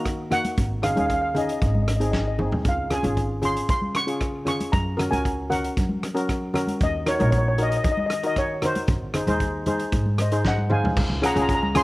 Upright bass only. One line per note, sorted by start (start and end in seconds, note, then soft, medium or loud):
0.00 0.41 D#3 medium
0.58 0.91 G#1 medium
0.97 1.51 D#2 medium
1.62 2.49 G#1 medium
2.65 2.98 C#2 medium
3.04 3.59 G#1 medium
3.69 4.56 C#3 medium
4.73 5.06 F#2 medium
5.12 5.66 C#2 medium
5.77 6.65 F#3 medium
6.81 7.14 D#2 medium
7.21 7.75 A#1 medium
7.85 8.72 D#3 medium
8.88 9.22 G#1 medium
9.27 9.82 D#2 medium
9.92 10.80 G#2 medium
10.96 11.08 C#2 medium
11.10 11.32 C#2 medium
11.36 11.83 C#2 medium